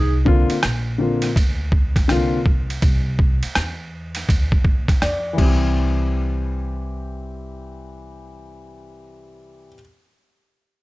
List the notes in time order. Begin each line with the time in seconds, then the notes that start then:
Already playing: C2 D#4 G#4
0.25 D3 A#3 C4 F4, kick
0.50 muted upright bass stroke, ride
0.63 A#1, cross-stick, hi-hat pedal, ride
0.98 D3 A#3 C4 F4
1.22 cross-stick, ride
1.36 D2, kick, ride
1.72 kick
1.96 kick, cross-stick, ride
2.08 C2 D3 A#3 C4 F4, cross-stick, hi-hat pedal, ride
2.46 kick
2.70 ride
2.82 C2, kick, ride
3.19 kick
3.43 muted upright bass stroke, ride
3.55 E2, cross-stick, hi-hat pedal, ride
4.15 cross-stick, ride
4.29 D2, kick, ride
4.52 kick
4.65 kick
4.88 muted upright bass stroke, kick, cross-stick, ride
5.02 F2 D5, cross-stick, hi-hat pedal, ride
5.33 E3 G3
5.38 C2 C4, kick, crash
5.44 G4